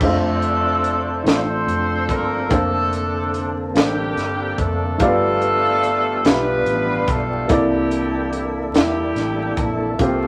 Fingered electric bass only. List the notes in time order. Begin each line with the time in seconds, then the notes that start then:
0.00 F1
1.25 A1
1.66 F1
2.09 G1
2.51 F1
3.75 A1
4.16 G1
4.58 F1
5.00 G1
6.25 B1
6.66 A1
7.08 B1
7.50 C2
8.74 E2
9.16 A1
9.57 A#1
9.99 C2